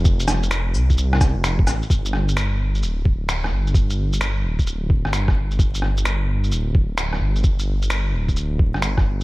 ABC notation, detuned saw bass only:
X:1
M:4/4
L:1/16
Q:"Swing 16ths" 1/4=130
K:Fmix
V:1 name="Detuned saw bass" clef=bass
F,,,6 C,,4 C,, F,,,3 A,,, z | G,,,8 D,,,6 G,,,2- | G,,,6 D,,,4- D,,, G,,,4- G,,, | G,,,8 D,,,6 G,,,2- |
G,,,6 D,,,4- D,,, G,,,4- G,,, |]